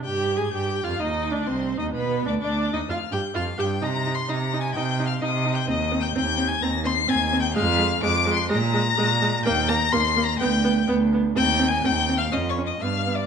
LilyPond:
<<
  \new Staff \with { instrumentName = "Violin" } { \time 4/4 \key c \minor \tempo 4 = 127 \tuplet 3/2 { g'''4 aes'''8 g'''4 f'''8 ees'''4 d'''8 c'''4 ees'''8 } | \tuplet 3/2 { b''4 d'''8 d'''4 ees'''8 } f'''8 g'''8 f'''8 g'''8 | \tuplet 3/2 { bes'''4 c''''8 bes'''4 aes'''8 g'''4 f'''8 ees'''4 g'''8 } | \tuplet 3/2 { ees'''4 g'''8 g'''4 aes'''8 } bes'''8 c''''8 \tuplet 3/2 { aes'''4 g'''8 } |
f'''4 \tuplet 3/2 { d''''4 c''''8 } bes'''2 | g'''8 bes'''8 \tuplet 3/2 { c''''4 bes'''8 } g'''4 r4 | \tuplet 3/2 { g'''4 aes'''8 g'''4 f'''8 ees'''8 des'''8 ees'''8 f'''4 d'''8 } | }
  \new Staff \with { instrumentName = "Violin" } { \time 4/4 \key c \minor \tuplet 3/2 { g''4 aes''8 g''4 f''8 ees''4 d''8 c''4 ees''8 } | \tuplet 3/2 { b'4 d''8 d''4 ees''8 } f''8 g''8 f''8 g''8 | \tuplet 3/2 { bes''4 c'''8 bes''4 aes''8 g''4 f''8 ees''4 g''8 } | \tuplet 3/2 { ees''4 g''8 g''4 aes''8 } bes''8 c'''8 \tuplet 3/2 { aes''4 g''8 } |
f''4 \tuplet 3/2 { d'''4 c'''8 } bes''2 | g''8 bes''8 \tuplet 3/2 { c'''4 bes''8 } g''4 r4 | \tuplet 3/2 { g''4 aes''8 g''4 f''8 ees''8 des''8 ees''8 f''4 d''8 } | }
  \new Staff \with { instrumentName = "Viola" } { \time 4/4 \key c \minor \tuplet 3/2 { g'4 aes'8 g'4 f'8 ees'4 d'8 c'4 ees'8 } | \tuplet 3/2 { b4 d'8 d'4 ees'8 } f'8 g'8 f'8 g'8 | ees'8 ees'8 ees'8 ees'8 ees'8 ees'8 ees'8 ees'8 | c'8 c'8 c'8 c'8 c'8 c'8 c'8 c'8 |
aes8 aes8 aes8 aes8 aes8 aes8 aes8 aes8 | bes8 bes8 bes8 bes8 b8 b8 b8 b8 | c'8 c'8 c'8 c'8 des'8 des'8 b8 b8 | }
  \new Staff \with { instrumentName = "Cello" } { \clef bass \time 4/4 \key c \minor \tuplet 3/2 { g,4 aes,8 g,4 f,8 ees,4 d,8 c,4 ees,8 } | \tuplet 3/2 { b,4 d,8 d,4 ees,8 } f,8 g,8 f,8 g,8 | c4 c4 c4 c4 | ees,4 ees,4 ees,4 ees,4 |
f,4 f,4 bes,4 bes,4 | ees,4 ees,4 d,4 d,4 | ees,4 ees,4 f,4 g,4 | }
>>